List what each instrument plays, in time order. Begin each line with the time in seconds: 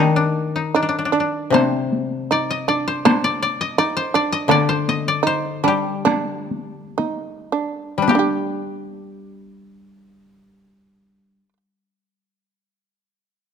Already playing: koto D#3 C4 G4, shamisen D4
0.00 koto D#4
0.16 koto D4
0.56 koto D#4
0.74 koto D4, shamisen D#4
0.83 koto D4
0.89 koto D4
0.99 koto D4
1.05 koto D4
1.12 shamisen D4, koto D4
1.20 koto D4
1.50 koto C3 C5, shamisen D4
1.55 taiko rim, taiko high
1.93 taiko high
2.31 shamisen D#4, koto D5
2.51 koto D#5
2.68 shamisen D4, koto D5
2.88 koto C5
3.05 shamisen D4, koto C5, taiko rim, taiko high
3.24 koto D5
3.43 koto D5
3.61 koto D#5
3.78 shamisen D#4, koto D5
3.97 koto C5
4.14 shamisen D4, koto D5
4.32 koto D#5
4.48 koto D3 D5, shamisen D4, taiko rim, taiko high
4.69 koto C5
4.88 koto D#5, taiko high
5.08 koto D5
5.23 shamisen D#4, koto C5
5.64 koto G3, shamisen D4
5.68 koto G4
6.05 shamisen D4, taiko rim, taiko high
6.51 koto D#4, taiko high
6.98 shamisen D#4, taiko high
7.52 shamisen D4
7.98 koto G3
8.02 koto D4
8.08 shamisen G3, koto G4, taiko high
8.15 shamisen D4 G4